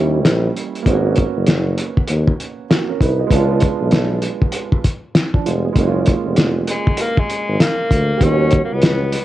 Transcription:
Already playing: D#2 G3 A#3 C#4 E4
0.25 A#1, snare, closed hi-hat
0.56 closed hi-hat
0.75 closed hi-hat
0.82 G#1 A#3 B3, kick, closed hi-hat
0.88 C#4 F#4
1.16 kick, closed hi-hat
1.36 F#1
1.46 snare, closed hi-hat
1.78 closed hi-hat
1.97 kick
2.08 D#2, closed hi-hat
2.28 kick
2.40 closed hi-hat
2.70 A#3 F#4, snare, closed hi-hat
2.89 C#4 A#4
3.01 C2 D#4 B4, kick, closed hi-hat
3.19 F#4 D#5
3.27 G#3 B3, kick
3.31 C#2 D4 F4, closed hi-hat
3.60 kick, closed hi-hat
3.81 B1
3.91 snare, closed hi-hat
4.22 closed hi-hat
4.42 kick
4.52 closed hi-hat
4.72 kick
4.84 kick, closed hi-hat
5.15 snare, closed hi-hat
5.34 F3 D4, kick
5.46 F1 G#3 F4, closed hi-hat
5.65 B3 G#4
5.73 F#1 G#3 A#3, kick, closed hi-hat
5.78 C#4 D#4
5.87 F4
6.06 kick, closed hi-hat
6.26 F1
6.36 snare, closed hi-hat
6.67 G#3, closed hi-hat
6.87 kick
6.97 A#3, closed hi-hat
7.17 G#3, kick
7.29 closed hi-hat
7.48 G#1
7.60 A#3, snare, closed hi-hat
7.91 D2, kick, closed hi-hat
8.17 D#2 G3 B3, kick, closed hi-hat
8.22 C#4 F4
8.32 F#4
8.51 kick, closed hi-hat
8.64 A#3
8.71 C#2 B3
8.81 snare, closed hi-hat
9.12 closed hi-hat

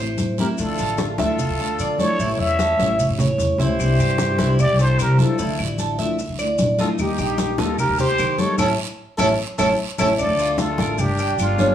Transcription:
Already playing: A1
0.00 A3 C4 E4 C5
0.18 A2, high conga, short guiro, maracas
0.38 A3 C4 E4 G4 A#4, high conga, short guiro, maracas
0.58 D2 D3 F3 A3 D4 F4 A4, high conga, long guiro, maracas
0.78 A1 A4, high conga, maracas
0.98 high conga, short guiro, maracas
1.18 D2 F3 A3 D4 E4 F4 A4 E5, high conga, short guiro, maracas
1.39 muted steel-string acoustic guitar stroke, high conga, low conga, long guiro, maracas
1.49 D2
1.59 A3 D4 A4, high conga
1.79 D3 D5, high conga, short guiro, maracas
1.98 F3 A3 D4 E4 A4 C#5, high conga, short guiro, maracas
2.19 A1 E3 A3 C#4 E4, long guiro, maracas
2.39 E2 C#5 E5, high conga
2.59 A4, high conga, short guiro, maracas
2.79 A1 A3 C#4 E4 E5, high conga, short guiro, maracas
2.99 muted steel-string acoustic guitar stroke, low conga, long guiro, maracas
3.09 A1
3.19 A3 C#4 E4 C#5, low conga, maracas
3.38 E2, low conga, short guiro, maracas
3.58 C#2 A3 C#4 E4 G4 C5, low conga, short guiro, maracas
3.79 C2 C3 E3 G3 D4 E4, high conga, long guiro, claves, maracas
3.99 G2 G4, high conga, maracas
4.18 high conga, short guiro, maracas
4.39 C2 E3 G3 D4 E4, high conga, short guiro, maracas
4.59 G4 D5, high conga, low conga, long guiro, claves, maracas
4.70 C2
4.79 G3 D4 E4 G4 A4 C5, high conga, maracas
4.98 C3 G4 A#4 C5, high conga, short guiro, claves, maracas
5.18 E3 G3 D4 E4 F4 A4, high conga, short guiro, maracas
5.38 D2 D3 F3 A3 D4 E4, high conga, long guiro, maracas
5.58 A1, high conga, claves
5.78 A4, high conga, short guiro, maracas
5.99 D2 F3 A3 D4 E4 E5, short guiro, maracas
6.18 muted steel-string acoustic guitar stroke, high conga, long guiro, maracas
6.29 D2
6.39 A3 D4 E4 D5, high conga, claves, maracas
6.58 A#1, high conga, short guiro, maracas
6.78 F3 A3 D4 D#4 E4 F4 A4, high conga, short guiro, maracas
6.98 D#2 D#3 G3 A#3 D#4 G4, high conga, long guiro, claves, maracas
7.18 A#1 D#4 G4, high conga, maracas
7.38 high conga, short guiro, maracas
7.58 D#2 G3 A#3 D#4 F4 G4 A4, high conga, short guiro, maracas
7.79 G4 A#4, muted steel-string acoustic guitar stroke, high conga, low conga, long guiro, claves, maracas
7.89 D#2
7.98 A#3 D#4 G4 C5, high conga, low conga, maracas
8.18 D#3 A#4, high conga, short guiro, claves, maracas
8.38 G3 A#3 D#4 G4 A4 C#5, high conga, short guiro, maracas
8.58 A1 A3 C#4 E4 A4, high conga, long guiro, claves, maracas
9.17 A1 A3 C#4 E4 A4, high conga, long guiro, claves, maracas
9.58 A1 A3 C#4 E4 A4, high conga, long guiro, claves, maracas
9.98 A1 A3 C#4 E4 A4, high conga, long guiro, claves, maracas
10.18 D2 D3 A3 D4 A4 D5, high conga, long guiro, claves, maracas
10.22 F4
10.29 D2
10.38 F4, high conga, maracas
10.58 D3 A3 D4 F4 A4, high conga, short guiro, maracas
10.78 A1 A#4, high conga, short guiro, maracas
10.98 G1 D4 G4, muted steel-string acoustic guitar stroke, high conga, low conga, long guiro, claves, maracas
11.18 G4, high conga, maracas
11.38 G1 G3 A#3 D4 F4 G4, high conga, short guiro, claves, maracas
11.58 G3 A#3 C#4 D4 G4, high conga, short guiro, maracas

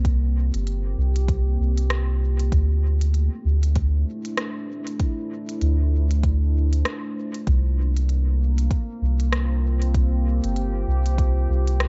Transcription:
Already playing: C2 A#3 C4 F4 G4 C5
0.05 kick, closed hi-hat
0.54 G1, closed hi-hat
0.67 closed hi-hat
0.98 C2
1.16 closed hi-hat
1.28 kick, closed hi-hat
1.60 C2
1.77 closed hi-hat
1.90 cross-stick, closed hi-hat
2.39 closed hi-hat
2.52 D2 A3, kick, closed hi-hat
2.79 D4
2.99 E4, closed hi-hat
3.14 closed hi-hat
3.45 D2
3.63 closed hi-hat
3.76 kick, closed hi-hat
4.25 closed hi-hat
4.37 cross-stick, closed hi-hat
4.87 closed hi-hat
5.00 kick, closed hi-hat
5.49 closed hi-hat
5.61 D2, closed hi-hat
6.11 closed hi-hat
6.23 kick, closed hi-hat
6.73 closed hi-hat
6.85 cross-stick, closed hi-hat
7.34 closed hi-hat
7.47 C2 A#3, kick, closed hi-hat
7.96 closed hi-hat
8.09 closed hi-hat
8.26 C4
8.58 closed hi-hat
8.71 kick, closed hi-hat
8.87 F4
9.02 C2
9.20 closed hi-hat
9.32 cross-stick, closed hi-hat
9.72 G4 C5
9.82 closed hi-hat
9.94 kick, closed hi-hat
10.44 G1, closed hi-hat
10.56 closed hi-hat
10.87 C2
11.06 closed hi-hat
11.18 kick, closed hi-hat
11.49 C2
11.67 closed hi-hat
11.80 cross-stick, closed hi-hat

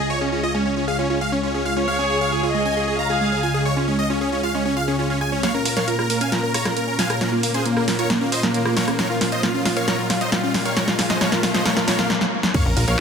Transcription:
Already playing: C#2 C#3 G#3 F4 G#4
0.10 F4 C#5
0.21 C#4 G#4
0.32 C#4 F4
0.43 F4 D#5
0.54 G#3 C#4
0.65 C#4
0.77 C#4 F4
0.88 G#4 F5
0.99 C#4 F4
1.10 C#4 F4
1.21 G#3 F5
1.32 C#4
1.43 C#4 F4
1.54 C#4 G#4
1.65 F4 F5
1.77 C#4 F4
1.88 G#3 C#5 F5
1.99 C#4 G#4
2.10 F4 G#4
2.21 G#4 F5
2.32 F4 G#4
2.43 F4 G#4
2.54 G#3 G#4 D#5
2.65 C#4 G#5
2.77 F4 G#4
2.88 G#4
2.99 F4 F5 A#5
3.10 F4 G#4
3.21 G#3 G#4
3.32 C#4 G#4
3.43 F4 G#5
3.54 G#4
3.65 F4 C#5
3.76 C#4 F4
3.88 G#3 C#4
3.99 C#4 D#5
4.10 C#4 F4
4.21 C#4 G#4
4.32 C#4 F4
4.43 F4 F5
4.54 G#3 C#4
4.65 C#4
4.77 F4 F5
4.88 C#4 G#4
4.99 C#4 F4
5.10 C#4 F4
5.21 G#3 G#5
5.32 C#4
5.43 A#2 A#3 C#4 F4 C#5 F5, snare, closed hi-hat, riser
5.54 C#4 A#4
5.65 F4 A#4, open hi-hat
5.77 A#4 C#5 F5, snare, closed hi-hat
5.88 F4 A#4, closed hi-hat
5.99 F4 A#4, cross-stick
6.10 A#3 A#4, open hi-hat
6.21 C#4 F5 G#5, closed hi-hat
6.32 F4 A#4, snare, closed hi-hat
6.43 A#4
6.54 F4 C#5 A#5, cross-stick, open hi-hat
6.65 F4 A#4, cross-stick, snare, closed hi-hat
6.76 A#3 A#4, closed hi-hat
6.88 C#4 A#4
6.99 F4 F5 G#5, snare, open hi-hat
7.10 A#4, cross-stick, closed hi-hat
7.21 C#4 F4 A#4, snare, closed hi-hat
7.32 A#3 F4
7.43 A#3, open hi-hat
7.54 C#4 G#4 C5, closed hi-hat
7.65 A#3 F4, closed hi-hat
7.77 A#3 A#4, cross-stick
7.88 A#3 F4, snare, open hi-hat
7.99 F4 A#4 C#5, closed hi-hat
8.10 A#3, snare, closed hi-hat
8.21 A#3 C#4
8.32 F4 C5 D#5, open hi-hat
8.43 A#3 A#4, snare, closed hi-hat
8.54 A#3 F4, closed hi-hat
8.65 A#3 F4, cross-stick
8.77 A#3 A#4 C#5, snare, open hi-hat
8.88 A#3 C#4, cross-stick, closed hi-hat
8.99 F4 A#4 C#5, snare, closed hi-hat
9.10 F4 A#4
9.21 F4, snare, open hi-hat
9.32 F4 C5 D#5, closed hi-hat
9.43 A#3 F4, snare, closed hi-hat
9.54 C#4 F4
9.65 F4, snare, open hi-hat
9.77 A#4 C#5 F5, closed hi-hat
9.88 F4 A#4 C#5, snare, closed hi-hat
9.99 F4 A#4
10.10 F4, snare, open hi-hat
10.21 F4 C5 D#5, closed hi-hat
10.32 A#3 F4, snare, closed hi-hat
10.43 C#4 F4
10.54 F4, snare, open hi-hat
10.65 A#4 C#5 F5, closed hi-hat
10.77 F4 A#4 C#5, snare, closed hi-hat
10.88 F4 A#4, snare
10.99 F4, snare, open hi-hat
11.10 F4 C5 D#5, snare
11.21 F4 A#4 C#5, snare, closed hi-hat
11.32 F4 A#4, snare
11.43 F4, snare, open hi-hat
11.54 F4 C5 D#5, snare, closed hi-hat
11.65 F4 A#4 C#5, snare, closed hi-hat
11.77 F4 A#4, snare
11.88 F4 A#4 C#5, snare, open hi-hat
11.99 F4 A#4, snare, closed hi-hat
12.10 snare
12.21 snare
12.43 snare
12.54 F3 A#3 C#4 C#5 F5, kick, closed hi-hat, crash, sub drop
12.65 A#1 C#4 A#4
12.77 A#1 F4 A#4, open hi-hat, ride
12.88 A#1 A#4 C#5 F5, closed hi-hat

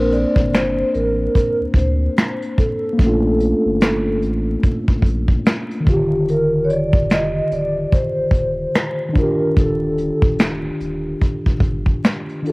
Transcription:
Already playing: A#1 A#3 C4 D4 A#4 C5
0.12 D5, closed hi-hat
0.36 G1, kick
0.53 C5, finger snap, snare, closed hi-hat
0.94 A1 A#4, closed hi-hat
1.35 A#4, kick, closed hi-hat
1.61 D2
1.74 D2 C5, kick, closed hi-hat
2.17 finger snap, snare, closed hi-hat
2.42 closed hi-hat
2.58 A4, kick, closed hi-hat
2.93 A#3
2.98 A#1 A3, kick, closed hi-hat
3.02 C#4
3.07 D4 F4
3.40 closed hi-hat
3.65 G1
3.81 finger snap, snare, closed hi-hat
4.22 A1, closed hi-hat
4.63 kick, closed hi-hat
4.88 A#1, kick
5.02 A#1, kick, closed hi-hat
5.28 kick
5.45 finger snap, snare, closed hi-hat
5.71 closed hi-hat
5.80 D#3
5.85 D#1 D3, kick, closed hi-hat
5.89 F4 G4
5.93 G4
6.28 A#4, closed hi-hat
6.64 C#5
6.69 D5, closed hi-hat
6.93 F1, kick
7.10 D#5, finger snap, snare, closed hi-hat
7.51 D1 D5, closed hi-hat
7.92 C5, kick, closed hi-hat
8.17 D#1
8.31 D#1, kick, closed hi-hat
8.74 finger snap, snare, closed hi-hat
9.09 D#3
9.13 D4, kick, closed hi-hat
9.18 F4 A#4
9.22 G4
9.57 D#1 A4, kick, closed hi-hat
9.98 closed hi-hat
10.22 D1, kick
10.38 finger snap, snare, closed hi-hat
10.80 D#1, closed hi-hat
11.21 kick, closed hi-hat
11.46 G1, kick
11.60 G1, kick, closed hi-hat
11.86 kick
12.03 finger snap, snare, closed hi-hat
12.29 closed hi-hat
12.42 D#3 D4, closed hi-hat
12.47 F4 G4 A4

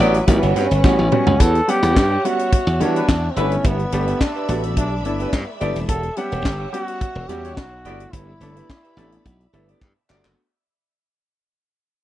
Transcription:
Already playing: F#3 B4 E5 D6
0.00 A1 B3 G4 B4 D5 E5, closed hi-hat
0.14 muted clean electric guitar stroke, closed hi-hat
0.27 A1 E3 G3 B3 C#4 F#4 F#5 C#6, muted clean electric guitar stroke, kick, closed hi-hat
0.42 G1 G4 C#5 F#5, closed hi-hat
0.56 G2 C#4 G4 C#5 F#5, closed hi-hat
0.71 G1, closed hi-hat
0.84 A1 G3 B3 C#4 F#4 G4 C#5 F#5, kick, snare
0.98 A1, muted clean electric guitar stroke, high tom
1.12 G3 B3 C#4 F#4, muted clean electric guitar stroke, mid tom
1.27 C#2 G4 C#5 F#5, floor tom
1.39 E2 G4 A4 C#5 E5 F#5 E6, kick, closed hi-hat
1.55 muted clean electric guitar stroke, closed hi-hat
1.68 G3 B3 C#4 G4 F#5, muted clean electric guitar stroke, closed hi-hat
1.83 E2 G4 C#5 F#5, closed hi-hat
1.96 G2, kick, snare, clap
2.11 G4 C#5 G5
2.24 G3 B3 C#4 F#4 G4 C#5 F#5, closed hi-hat
2.39 muted clean electric guitar stroke, closed hi-hat
2.53 kick, closed hi-hat
2.67 E2, muted clean electric guitar stroke, closed hi-hat
2.80 E3 G3 B3 D4 F#4 G4 C#5 F#5, closed hi-hat
2.95 G3 F#4 B4, muted clean electric guitar stroke, closed hi-hat
3.09 E2, kick, snare, clap
3.23 muted clean electric guitar stroke
3.31 C4
3.36 G1 G3 A3 B3 C#4 D4 E4 G4 B4 D5 F#5 B5, closed hi-hat
3.51 muted clean electric guitar stroke, closed hi-hat
3.64 G1 B3 G4 B4 E5, kick, closed hi-hat
3.79 muted clean electric guitar stroke, closed hi-hat
3.92 G1 A3 B3 D4 G4, muted clean electric guitar stroke, closed hi-hat
4.07 G4 B4 E5, closed hi-hat
4.21 D4, muted clean electric guitar stroke, kick, snare, clap
4.35 G4 B4 E5
4.48 A1 A3 B3 D4 F#4 G4 B4 E5, closed hi-hat
4.63 muted clean electric guitar stroke, closed hi-hat
4.76 B1 D4 G4 B4 E5, kick, closed hi-hat
4.91 muted clean electric guitar stroke
5.05 G1 A3 B3 D4 E4, muted clean electric guitar stroke, closed hi-hat
5.20 G3 E4 G4 B4 E5, closed hi-hat
5.33 G2, muted clean electric guitar stroke, kick, snare, clap
5.48 muted clean electric guitar stroke
5.61 G1 A3 B3 D4 E4 G4 B4 D5 E5, closed hi-hat
5.75 D#1, muted clean electric guitar stroke, closed hi-hat
5.88 E1 G4 A4 C#5 F#5, kick, closed hi-hat
6.03 muted clean electric guitar stroke, closed hi-hat
6.17 G3 B3 C#4 G4 F#5, muted clean electric guitar stroke, closed hi-hat
6.31 E1 G4 C#5 F#5, closed hi-hat
6.45 G1, kick, snare, clap
6.60 G4 C#5 G5
6.73 G3 B3 C#4 F#4 G4 C#5 F#5, closed hi-hat
6.88 muted clean electric guitar stroke, closed hi-hat
7.01 kick, closed hi-hat
7.15 E1, muted clean electric guitar stroke
7.29 E2 G3 B3 C#4 F#4 G4 C#5 F#5, closed hi-hat
7.44 G3 F#4 C#5, muted clean electric guitar stroke, closed hi-hat
7.57 B1 F#4, kick, snare, clap
7.72 muted clean electric guitar stroke
7.85 G1 A3 B3 D4 E4 G4 B4 D5 F#5 B5, closed hi-hat
8.00 muted clean electric guitar stroke, closed hi-hat
8.13 G1 E4 G4 B4 E5, kick, closed hi-hat
8.28 muted clean electric guitar stroke
8.40 G1 A3 B3 D4 E4, muted clean electric guitar stroke, closed hi-hat
8.56 G4 B4 E5, closed hi-hat
8.69 muted clean electric guitar stroke, kick, snare, clap
8.83 G4 B4 E5, closed hi-hat
8.97 A1 A3 B3 D4 E4 G4 B4 E5, closed hi-hat
9.12 muted clean electric guitar stroke, closed hi-hat
9.26 B1, muted clean electric guitar stroke, kick, closed hi-hat
9.40 muted clean electric guitar stroke, closed hi-hat
9.53 G1 A3 B3 D4 E4 G4 B4 E5, closed hi-hat
9.68 B3 G4 B4 D5 E5, closed hi-hat
9.82 G2, muted clean electric guitar stroke, kick, clap
9.96 muted clean electric guitar stroke
10.09 G1 A3 B3 D4 F#4 G4 B4 D5 E5, clap
10.24 F#1, muted clean electric guitar stroke, clap

